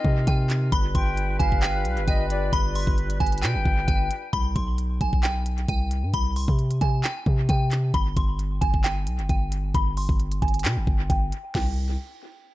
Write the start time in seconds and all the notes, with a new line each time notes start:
Already playing: D#3 C4 D#4 F4 D#5 G5
0.05 C3, kick
0.27 C3 G5, kick, closed hi-hat
0.50 clap, closed hi-hat
0.72 G1 G3 D4 F4 B4 B5, kick, closed hi-hat
0.95 G1 G5 C6, kick, closed hi-hat
1.17 closed hi-hat
1.39 G1 F5 G#5, kick, closed hi-hat
1.52 kick
1.62 G5, clap, closed hi-hat
1.85 B1, closed hi-hat
1.97 G1, closed hi-hat
2.08 G1 D#5 G5, kick, closed hi-hat
2.30 D5, closed hi-hat
2.53 G1 B5, kick, closed hi-hat
2.75 C6, open hi-hat
2.87 G1, kick
2.98 closed hi-hat
3.10 closed hi-hat
3.20 G1 G#5, kick, closed hi-hat
3.26 closed hi-hat
3.32 closed hi-hat
3.38 closed hi-hat
3.42 B2 G5, clap, closed hi-hat
3.55 G1
3.65 G1, kick
3.88 G1 G5, kick, closed hi-hat
4.11 closed hi-hat
4.33 C2 B5, kick, closed hi-hat
4.56 B1 C6, kick, closed hi-hat
4.78 closed hi-hat
5.01 B1 G#5, kick, closed hi-hat
5.13 kick
5.23 G5, clap, closed hi-hat
5.46 closed hi-hat
5.58 closed hi-hat
5.68 C2 G5, kick, closed hi-hat
5.91 closed hi-hat
6.03 G2
6.14 C2 B5, kick, closed hi-hat
6.36 C6, open hi-hat
6.48 C3, kick
6.59 closed hi-hat
6.71 closed hi-hat
6.81 C3 G#5, kick, closed hi-hat
7.04 G5, clap, closed hi-hat
7.26 C3, kick
7.49 C3 G5, kick, closed hi-hat
7.71 clap, closed hi-hat
7.94 G1 B5, kick, closed hi-hat
8.17 G1 C6, kick, closed hi-hat
8.39 closed hi-hat
8.61 G1 G#5, kick, closed hi-hat
8.74 kick
8.84 G5, clap, closed hi-hat
9.07 B1, closed hi-hat
9.19 G1, closed hi-hat
9.29 G1 G5, kick, closed hi-hat
9.52 closed hi-hat
9.74 G1 B5, kick, closed hi-hat
9.97 C6, open hi-hat
10.09 G1, kick
10.20 closed hi-hat
10.32 closed hi-hat
10.42 G1 G#5, kick, closed hi-hat
10.48 closed hi-hat
10.54 closed hi-hat
10.59 closed hi-hat
10.64 B2 G5, clap, closed hi-hat
10.77 G1
10.87 G1, kick
11.10 G1 G5, kick, closed hi-hat
11.32 closed hi-hat
11.55 C2 G5, kick, snare, crash